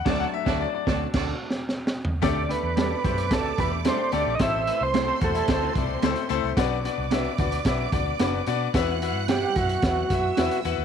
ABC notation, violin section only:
X:1
M:4/4
L:1/16
Q:1/4=111
K:Dmix
V:1 name="Violin section"
[Fda]2 z [Fda]2 z [Fda]2 [Fda]2 z6 | [dd']16 | [cc']16 | [dd']16 |
[ff']8- [ff']2 [ee']6 |]